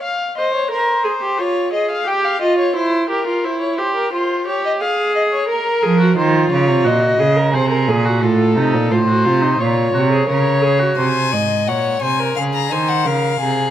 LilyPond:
<<
  \new Staff \with { instrumentName = "Violin" } { \time 4/4 \key bes \minor \tempo 4 = 88 r1 | r1 | r1 | r1 |
aes''4 ges''8 aes''8 f''16 bes''16 aes''16 ges''16 f''4 | }
  \new Staff \with { instrumentName = "Violin" } { \time 4/4 \key bes \minor f''8 ees''16 des''16 c''4 des''8 ees''16 f''16 g''16 f''16 ees''16 des''16 | c''8 bes'8 c''16 cis''16 c''16 bes'16 c''8 des''16 ees''16 f''8 ees''16 des''16 | bes'4 c''8 des''8 ees''4 aes'4 | a'4 c''4 des''4 des''4 |
c''8 ees''8 des''8 c''16 bes'16 aes'8 c''8 bes'8 aes'8 | }
  \new Staff \with { instrumentName = "Viola" } { \time 4/4 \key bes \minor r8 c''8 bes'8 aes'16 g'16 f'8 aes'8 g'8 f'8 | e'8 g'16 f'16 e'8 g'8 f'8 g'8 aes'4 | bes'8 aes'16 ges'16 f'4 ges'8 aes'16 bes'16 c''16 bes'16 aes'16 ges'16 | f'8 ees'8 f'16 fis'16 f'16 ees'16 f'8 ges'16 aes'16 bes'8 aes'16 ges'16 |
r1 | }
  \new Staff \with { instrumentName = "Cello" } { \clef bass \time 4/4 \key bes \minor r1 | r1 | r8 f8 ees8 des16 c16 bes,8 des8 c8 bes,8 | a,8 c16 bes,16 a,8 c8 bes,8 c8 des4 |
c8 aes,8 bes,8 c8 des8 ees8 des8 c8 | }
>>